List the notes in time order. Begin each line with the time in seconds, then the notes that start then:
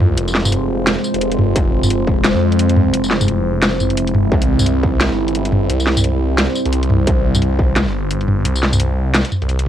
Already playing: G#3 C4 F4 C5
0.00 mid tom
0.11 C2
0.17 F1, closed hi-hat
0.28 tambourine
0.35 snare
0.45 mid tom, tambourine
0.52 closed hi-hat
0.87 snare, closed hi-hat
1.04 tambourine
1.14 F1, closed hi-hat
1.21 closed hi-hat
1.32 closed hi-hat
1.39 mid tom
1.56 F1 E4, kick, closed hi-hat
1.83 mid tom, tambourine
1.90 closed hi-hat
2.07 kick
2.24 snare, closed hi-hat
2.35 F2
2.52 closed hi-hat
2.59 closed hi-hat
2.69 closed hi-hat
2.76 mid tom
2.87 C2
2.94 F1, closed hi-hat
3.04 tambourine
3.11 snare
3.21 mid tom, tambourine
3.28 closed hi-hat
3.63 snare, closed hi-hat
3.80 G#1, mid tom, tambourine
3.90 F1, closed hi-hat
3.97 closed hi-hat
4.07 closed hi-hat
4.14 mid tom
4.32 C2 G3 C5, kick
4.42 closed hi-hat
4.59 mid tom, tambourine
4.66 closed hi-hat
4.83 kick
5.01 snare, closed hi-hat
5.11 G1
5.28 closed hi-hat
5.35 closed hi-hat
5.45 closed hi-hat
5.52 mid tom
5.63 G1
5.69 C2, closed hi-hat
5.80 tambourine
5.87 snare
5.97 mid tom, tambourine
6.04 closed hi-hat
6.38 snare, closed hi-hat
6.56 tambourine
6.66 C2, closed hi-hat
6.73 closed hi-hat
6.83 closed hi-hat
6.90 mid tom
7.07 C2, kick, closed hi-hat
7.35 mid tom, tambourine
7.42 closed hi-hat
7.59 kick
7.76 snare, closed hi-hat
7.86 G1
8.11 closed hi-hat
8.21 closed hi-hat
8.28 mid tom
8.38 G1
8.45 C2, closed hi-hat
8.56 tambourine
8.63 snare
8.73 mid tom, tambourine
8.80 closed hi-hat
9.14 snare, closed hi-hat
9.25 closed hi-hat
9.32 mid tom, tambourine
9.42 C2, closed hi-hat
9.49 closed hi-hat
9.59 closed hi-hat